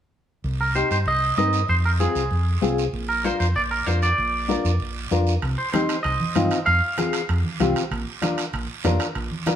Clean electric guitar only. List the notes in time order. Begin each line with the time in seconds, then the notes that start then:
0.61 A#4
0.75 C5
0.92 C5
1.08 D#5
1.38 D#5
1.69 C5
1.85 A#4
2.00 G#4
3.09 A#4
3.25 C5
3.40 C5
3.56 D5
3.71 A#4
3.86 C5
4.03 D5
5.58 C5
5.73 C5
6.03 D#5
6.66 F5